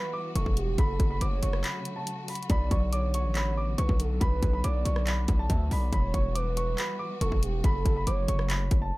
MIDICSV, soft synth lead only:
0, 0, Header, 1, 2, 480
1, 0, Start_track
1, 0, Key_signature, 2, "minor"
1, 0, Tempo, 428571
1, 877, Time_signature, 4, 2, 24, 8
1, 10054, End_track
2, 0, Start_track
2, 0, Title_t, "Soft synth lead"
2, 0, Program_c, 0, 80
2, 0, Note_on_c, 0, 71, 109
2, 353, Note_off_c, 0, 71, 0
2, 394, Note_on_c, 0, 69, 85
2, 624, Note_off_c, 0, 69, 0
2, 640, Note_on_c, 0, 67, 88
2, 867, Note_off_c, 0, 67, 0
2, 881, Note_on_c, 0, 69, 116
2, 1330, Note_off_c, 0, 69, 0
2, 1358, Note_on_c, 0, 73, 97
2, 1809, Note_off_c, 0, 73, 0
2, 2793, Note_on_c, 0, 74, 102
2, 3246, Note_off_c, 0, 74, 0
2, 3279, Note_on_c, 0, 73, 96
2, 4193, Note_off_c, 0, 73, 0
2, 4231, Note_on_c, 0, 71, 84
2, 4462, Note_off_c, 0, 71, 0
2, 4476, Note_on_c, 0, 69, 86
2, 4705, Note_off_c, 0, 69, 0
2, 4721, Note_on_c, 0, 71, 125
2, 5170, Note_off_c, 0, 71, 0
2, 5196, Note_on_c, 0, 74, 98
2, 6112, Note_off_c, 0, 74, 0
2, 6156, Note_on_c, 0, 76, 84
2, 6385, Note_off_c, 0, 76, 0
2, 6400, Note_on_c, 0, 74, 82
2, 6627, Note_off_c, 0, 74, 0
2, 6638, Note_on_c, 0, 73, 119
2, 7089, Note_off_c, 0, 73, 0
2, 7119, Note_on_c, 0, 71, 106
2, 8034, Note_off_c, 0, 71, 0
2, 8074, Note_on_c, 0, 69, 88
2, 8304, Note_off_c, 0, 69, 0
2, 8319, Note_on_c, 0, 67, 90
2, 8546, Note_off_c, 0, 67, 0
2, 8563, Note_on_c, 0, 69, 114
2, 9011, Note_off_c, 0, 69, 0
2, 9038, Note_on_c, 0, 73, 98
2, 9489, Note_off_c, 0, 73, 0
2, 10054, End_track
0, 0, End_of_file